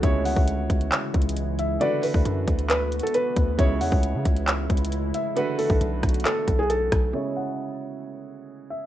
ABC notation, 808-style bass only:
X:1
M:4/4
L:1/16
Q:1/4=135
K:C#phr
V:1 name="808-style bass" clef=bass
C,,3 C,,3 C,,2 z2 C,,6 | z3 D,, F,,2 D,,4- D,, z3 D,,2 | C,,2 E,, C,,2 C, C,,4 C,,4 z2 | z3 B,,, B,,,2 B,,,2 z2 B,,,4 B,,,2 |
z16 |]